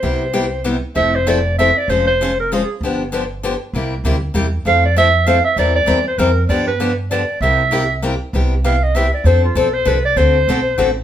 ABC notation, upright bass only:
X:1
M:3/4
L:1/8
Q:"Swing" 1/4=195
K:C
V:1 name="Upright bass" clef=bass
C,,6 | [K:F] F,,,6 | F,,,6 | G,,,6 |
C,,2 D,,2 E,,2 | F,,6 | E,,2 E,,2 F,,2 | G,,6 |
C,,6 | [K:C] C,,6 | F,,2 B,,,2 C,,2 | D,,2 B,,,2 A,,,2 |]